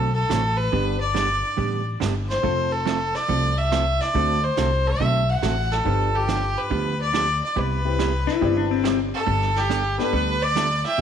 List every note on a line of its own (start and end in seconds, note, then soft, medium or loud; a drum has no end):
0.00 0.24 B1 medium
0.00 0.10 D3 medium
0.00 0.10 A3 medium
0.00 0.10 C4 medium
0.00 0.21 C4 medium
0.00 0.22 D4 medium
0.00 0.11 F#4 medium
0.00 0.22 F#4 medium
0.00 0.11 A4 medium
0.00 0.14 A4 medium
0.00 0.22 A4 medium
0.14 0.59 A4 medium
0.29 0.67 A1 medium
0.29 0.42 D3 medium
0.29 0.42 A3 medium
0.29 0.42 C4 medium
0.29 0.42 F#4 medium
0.29 0.43 A4 medium
0.29 snare medium
0.29 hi-hat pedal medium
0.57 1.00 B4 medium
0.72 1.41 G1 medium
0.72 0.96 D3 medium
0.72 0.96 G3 medium
0.72 0.99 B3 medium
0.72 0.96 B3 medium
0.72 0.96 D4 medium
0.72 0.99 D4 medium
0.72 0.96 G4 medium
0.72 0.99 G4 medium
0.72 0.99 B4 medium
0.72 brush sweep soft
0.72 kick soft
1.00 1.82 D5 medium
1.14 1.27 D3 medium
1.14 1.27 G3 medium
1.14 1.27 B3 medium
1.14 1.28 D4 medium
1.14 1.28 G4 medium
1.14 snare medium
1.14 hi-hat pedal medium
1.57 1.95 A1 medium
1.57 1.81 D3 soft
1.57 1.81 G3 medium
1.57 1.81 B3 medium
1.57 1.81 D4 medium
1.57 1.81 G4 medium
1.57 brush sweep soft
1.57 kick soft
2.00 2.38 G1 medium
2.00 2.13 D3 medium
2.00 2.13 G3 medium
2.00 2.13 B3 medium
2.00 2.13 D4 medium
2.00 2.13 G4 medium
2.00 snare medium
2.00 hi-hat pedal medium
2.29 2.73 C5 medium
2.29 snare soft
2.43 3.12 F1 medium
2.43 2.66 F3 soft
2.43 2.66 A3 medium
2.43 2.69 C4 medium
2.43 2.67 C4 medium
2.43 2.70 F4 medium
2.43 2.67 F4 medium
2.43 2.67 A4 medium
2.43 2.70 A4 medium
2.43 2.70 C5 medium
2.43 brush sweep soft
2.43 kick soft
2.72 3.17 A4 medium
2.85 2.98 F3 medium
2.85 2.98 A3 medium
2.85 2.98 C4 medium
2.85 2.99 F4 medium
2.85 2.99 A4 medium
2.85 snare medium
2.85 hi-hat pedal medium
3.15 3.59 D5 medium
3.15 snare soft
3.28 3.98 C2 medium
3.28 3.52 F3 medium
3.28 3.52 A3 medium
3.28 3.52 C4 medium
3.28 3.52 F4 medium
3.28 3.52 A4 medium
3.28 brush sweep soft
3.28 kick soft
3.58 4.02 E5 medium
3.72 3.84 F3 medium
3.72 3.84 A3 medium
3.72 3.84 C4 medium
3.72 3.84 F4 medium
3.72 3.84 A4 medium
3.72 snare medium
3.72 hi-hat pedal medium
4.01 4.45 D5 medium
4.01 snare soft
4.13 4.49 D2 medium
4.13 4.38 D3 medium
4.13 4.38 A3 medium
4.13 4.38 C4 medium
4.13 4.40 D4 medium
4.13 4.40 F#4 medium
4.13 4.38 F#4 medium
4.13 4.41 A4 medium
4.13 4.38 A4 medium
4.13 4.41 C5 medium
4.13 brush sweep soft
4.13 kick soft
4.43 4.89 C5 medium
4.57 4.94 C2 medium
4.57 4.69 D3 medium
4.57 4.70 A3 medium
4.57 4.70 C4 medium
4.57 4.70 F#4 medium
4.57 4.70 A4 medium
4.57 snare medium
4.57 hi-hat pedal medium
4.87 5.31 E5 loud
5.00 5.36 B1 medium
5.00 5.23 D3 medium
5.00 5.23 A3 medium
5.00 5.23 C4 medium
5.00 5.23 F#4 medium
5.00 5.24 A4 medium
5.00 brush sweep medium
5.00 kick soft
5.30 5.74 F#5 medium
5.42 5.79 A1 medium
5.42 5.55 D3 medium
5.42 5.55 A3 medium
5.42 5.55 C4 medium
5.42 5.55 F#4 medium
5.42 5.55 A4 medium
5.42 snare medium
5.42 hi-hat pedal medium
5.72 6.17 A4 medium
5.72 snare soft
5.84 6.54 G1 medium
5.84 6.09 D3 medium
5.84 6.09 F3 medium
5.84 6.09 B3 medium
5.84 7.05 D4 medium
5.84 6.09 D4 medium
5.84 7.05 F4 medium
5.84 7.05 G4 soft
5.84 6.09 G4 medium
5.84 7.06 B4 medium
5.84 brush sweep soft
5.84 kick soft
6.15 6.59 G4 medium
6.28 6.40 D3 medium
6.28 6.40 F3 medium
6.28 6.40 B3 medium
6.28 6.41 D4 medium
6.28 6.41 G4 medium
6.28 snare medium
6.28 hi-hat pedal soft
6.58 7.00 B4 medium
6.70 7.39 D2 medium
6.70 6.94 D3 medium
6.70 6.94 F3 medium
6.70 6.94 B3 medium
6.70 6.94 D4 medium
6.70 6.94 G4 medium
6.70 brush sweep medium
6.70 kick soft
7.02 7.40 D5 loud
7.13 7.26 D3 medium
7.13 7.26 F3 medium
7.13 7.26 B3 medium
7.13 7.26 D4 medium
7.13 7.26 G4 medium
7.13 snare medium
7.13 hi-hat pedal medium
7.44 7.60 D5 medium
7.56 8.25 C2 medium
7.56 7.79 C3 medium
7.56 7.79 G3 medium
7.56 7.79 B3 medium
7.56 7.80 E4 medium
7.56 7.79 G4 medium
7.56 8.86 B4 medium
7.56 brush sweep soft
7.56 kick soft
7.85 7.97 C4 medium
7.85 7.98 E4 medium
7.85 7.98 G4 medium
7.85 7.98 B4 medium
7.99 8.11 C3 medium
7.99 8.11 G3 medium
7.99 8.11 B3 medium
7.99 8.12 E4 medium
7.99 8.12 G4 medium
7.99 snare medium
7.99 hi-hat pedal medium
8.27 8.55 E4 medium
8.27 snare soft
8.41 9.10 G1 medium
8.41 8.65 C3 medium
8.41 8.65 G3 medium
8.41 8.65 B3 medium
8.41 9.07 C4 medium
8.41 9.07 E4 medium
8.41 8.65 E4 medium
8.41 9.08 G4 medium
8.41 8.65 G4 medium
8.41 9.08 D5 medium
8.41 brush sweep medium
8.41 kick soft
8.57 8.70 D4 medium
8.71 8.99 C4 medium
8.84 8.96 C3 medium
8.84 8.97 G3 medium
8.84 8.97 B3 medium
8.84 8.97 E4 medium
8.84 8.97 G4 medium
8.84 snare medium
8.84 hi-hat pedal medium
9.14 9.59 A4 medium
9.26 9.96 G1 medium
9.26 9.50 G3 medium
9.26 9.50 B3 medium
9.26 9.50 D4 medium
9.26 9.50 A4 medium
9.26 brush sweep soft
9.26 kick soft
9.42 snare soft
9.56 9.99 G4 medium
9.56 10.00 G4 medium
9.56 snare soft
9.69 9.82 G3 medium
9.69 9.83 B3 medium
9.69 9.82 D4 medium
9.69 9.83 A4 medium
9.69 snare medium
9.69 hi-hat pedal medium
9.98 10.11 B3 medium
9.98 10.12 D4 medium
9.98 10.12 G4 medium
9.98 10.12 A4 medium
9.98 10.44 B4 loud
9.98 10.45 B4 medium
9.98 snare soft
10.13 10.82 D2 medium
10.13 10.36 G3 medium
10.13 10.36 B3 medium
10.13 10.36 D4 medium
10.13 10.37 A4 medium
10.13 brush sweep soft
10.13 kick soft
10.42 10.85 D5 loud
10.42 10.86 D5 medium
10.56 10.68 G3 medium
10.56 10.68 B3 medium
10.56 10.68 D4 medium
10.56 10.69 A4 medium
10.56 snare medium
10.56 hi-hat pedal medium
10.85 11.01 E5 loud
10.85 11.01 G5 medium
10.85 snare soft
10.98 11.01 C3 medium